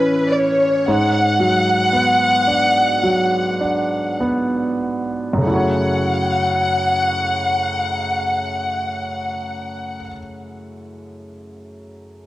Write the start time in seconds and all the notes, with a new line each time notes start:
Already playing: A2 E3 C#4 E4 B4
0.31 D5
0.38 C#5
0.88 G#2 F#5
1.40 F#3
1.93 B3
2.47 D4
3.03 F#3
3.61 D4
4.20 B3
5.33 F#2
5.38 C#3
5.42 A3
5.47 E4 F#5
5.51 F#4
5.55 C#5